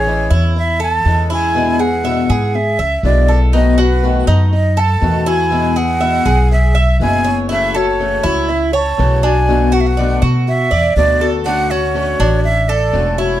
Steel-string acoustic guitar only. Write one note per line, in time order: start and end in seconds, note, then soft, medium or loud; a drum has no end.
0.06 0.30 E3 medium
0.06 0.31 G#3 medium
0.06 0.31 C#4 medium
0.06 0.30 E4 medium
0.31 0.55 G#3 soft
0.31 0.56 C#4 soft
0.31 0.55 E4 soft
0.56 muted steel-string acoustic guitar stroke medium
1.05 1.29 E3 medium
1.05 1.30 G#3 medium
1.05 1.30 C#4 medium
1.05 1.29 E4 medium
1.30 1.55 G#3 soft
1.30 1.55 C#4 soft
1.30 1.54 E4 soft
1.55 1.79 B2 medium
1.55 1.79 D3 medium
1.55 1.79 G#3 medium
1.55 1.80 B3 medium
1.55 1.78 E4 medium
1.80 2.04 G#3 soft
1.80 2.04 B3 soft
1.80 2.04 E4 soft
2.04 2.28 B2 medium
2.04 2.28 D3 medium
2.04 2.29 G#3 medium
2.04 2.29 B3 medium
2.04 2.28 E4 medium
2.29 2.54 G#3 soft
2.29 2.54 B3 soft
2.29 2.53 E4 soft
2.55 muted steel-string acoustic guitar stroke soft
3.04 3.28 B2 medium
3.04 3.28 D3 medium
3.04 3.28 G#3 medium
3.04 3.28 B3 medium
3.04 3.28 E4 medium
3.29 3.54 G#3 soft
3.29 3.53 B3 soft
3.29 3.53 E4 soft
3.52 3.77 B2 medium
3.52 3.77 D#3 medium
3.52 3.78 A3 medium
3.52 3.78 B3 medium
3.52 3.77 F#4 medium
3.78 4.02 A3 soft
3.78 4.03 B3 soft
3.78 4.02 F#4 soft
4.02 4.27 B2 medium
4.02 4.27 D#3 medium
4.02 4.27 A3 medium
4.02 4.27 B3 medium
4.02 4.27 F#4 medium
4.28 4.52 A3 soft
4.28 4.52 B3 soft
4.28 4.52 F#4 soft
4.53 muted steel-string acoustic guitar stroke medium
5.01 5.25 B2 medium
5.01 5.26 D#3 medium
5.01 5.26 A3 medium
5.01 5.26 B3 medium
5.01 5.25 F#4 medium
5.26 5.51 A3 soft
5.26 5.51 B3 soft
5.26 5.50 F#4 soft
5.51 5.75 B2 medium
5.51 5.75 E3 medium
5.51 5.76 G#3 medium
5.51 5.76 B3 medium
5.51 5.75 E4 medium
5.76 6.00 G#3 soft
5.76 6.01 B3 soft
5.76 6.00 E4 soft
6.00 6.24 B2 medium
6.00 6.25 E3 medium
6.00 6.25 G#3 medium
6.00 6.25 B3 medium
6.00 6.25 E4 medium
6.26 6.51 G#3 soft
6.26 6.50 B3 soft
6.26 6.50 E4 soft
6.51 muted steel-string acoustic guitar stroke soft
7.01 7.24 B2 medium
7.01 7.25 E3 medium
7.01 7.25 G#3 medium
7.01 7.25 B3 medium
7.01 7.24 E4 medium
7.25 7.50 G#3 soft
7.25 7.50 B3 soft
7.25 7.49 E4 soft
7.50 7.74 C#3 medium
7.50 7.74 E3 medium
7.50 7.74 A3 medium
7.50 7.74 C#4 medium
7.50 7.74 F#4 medium
7.76 7.99 A3 soft
7.76 7.99 C#4 soft
7.76 7.99 F#4 soft
8.00 8.23 C#3 medium
8.00 8.24 E3 medium
8.00 8.24 A3 medium
8.00 8.24 C#4 medium
8.00 8.23 F#4 medium
8.24 8.49 A3 soft
8.24 8.49 C#4 soft
8.24 8.48 F#4 soft
8.50 muted steel-string acoustic guitar stroke medium
8.98 9.22 C#3 medium
8.98 9.22 E3 medium
8.98 9.23 A3 medium
8.98 9.23 C#4 medium
8.98 9.22 F#4 medium
9.23 9.48 A3 soft
9.23 9.47 C#4 soft
9.23 9.47 F#4 soft
9.48 9.72 B2 medium
9.48 9.72 D3 medium
9.48 9.72 A3 medium
9.48 9.73 B3 medium
9.48 9.72 F#4 medium
9.73 9.98 A3 soft
9.73 9.97 B3 soft
9.73 9.97 F#4 soft
9.98 10.21 B2 medium
9.98 10.22 D3 medium
9.98 10.22 A3 medium
9.98 10.22 B3 medium
9.98 10.22 F#4 medium
10.23 10.47 A3 soft
10.23 10.47 B3 soft
10.23 10.46 F#4 soft
10.47 muted steel-string acoustic guitar stroke soft
10.97 11.20 B2 medium
10.97 11.21 D3 medium
10.97 11.21 A3 medium
10.97 11.21 B3 medium
10.97 11.20 F#4 medium
11.21 11.46 A3 soft
11.21 11.45 B3 soft
11.21 11.45 F#4 soft
11.46 11.69 D3 medium
11.46 11.70 A3 medium
11.46 11.70 C#4 medium
11.46 11.69 F#4 medium
11.70 11.94 A3 soft
11.70 11.95 C#4 soft
11.70 11.94 F#4 soft
11.94 12.19 D3 medium
11.94 12.19 A3 medium
11.94 12.19 C#4 medium
11.94 12.18 F#4 medium
12.19 12.43 A3 soft
12.19 12.44 C#4 soft
12.19 12.43 F#4 soft
12.44 muted steel-string acoustic guitar stroke medium
12.93 13.17 D3 medium
12.93 13.17 A3 medium
12.93 13.18 C#4 medium
12.93 13.17 F#4 medium
13.18 13.40 A3 soft
13.18 13.40 C#4 soft
13.18 13.40 F#4 soft